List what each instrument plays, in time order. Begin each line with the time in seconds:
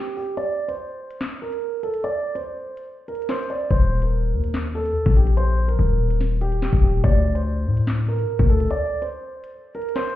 Already playing: grand piano G4
0.17 grand piano G4, open hi-hat
0.37 grand piano D5, closed hi-hat
0.68 grand piano C5, closed hi-hat
1.11 closed hi-hat
1.21 snare, clap, closed hi-hat
1.42 grand piano A#4
1.52 closed hi-hat
1.83 grand piano A4, closed hi-hat
1.94 closed hi-hat
2.04 grand piano D5, closed hi-hat
2.35 grand piano C5, closed hi-hat
2.77 closed hi-hat
3.08 grand piano A#4, closed hi-hat
3.15 closed hi-hat
3.22 closed hi-hat
3.29 grand piano C5, snare, clap, closed hi-hat
3.36 closed hi-hat
3.43 closed hi-hat
3.50 grand piano D5, closed hi-hat
3.71 808-style bass D#1, grand piano C5, kick, closed hi-hat
4.02 grand piano A#4, closed hi-hat
4.33 808-style bass D#2
4.44 closed hi-hat
4.54 snare, clap, closed hi-hat
4.75 grand piano A4
4.86 closed hi-hat
5.06 808-style bass A#1, kick
5.17 grand piano G4, closed hi-hat
5.27 closed hi-hat
5.37 grand piano C5, closed hi-hat
5.68 grand piano A#4, closed hi-hat
5.79 808-style bass D#1
6.11 closed hi-hat
6.21 snare
6.41 grand piano G4, closed hi-hat
6.52 closed hi-hat
6.62 snare, clap
6.73 808-style bass D#1, kick
6.83 grand piano G4, open hi-hat
7.04 808-style bass D2, grand piano D5, kick, closed hi-hat
7.35 grand piano C5, closed hi-hat
7.66 808-style bass A2
7.77 closed hi-hat
7.87 snare, clap, closed hi-hat
8.08 grand piano A#4
8.19 closed hi-hat
8.39 808-style bass D2, kick
8.49 grand piano A4, closed hi-hat
8.60 closed hi-hat
8.71 grand piano D5, closed hi-hat
9.02 grand piano C5, closed hi-hat
9.44 closed hi-hat
9.75 grand piano A#4, closed hi-hat
9.82 closed hi-hat
9.89 closed hi-hat
9.96 grand piano C5, snare, clap, closed hi-hat
10.03 closed hi-hat
10.10 closed hi-hat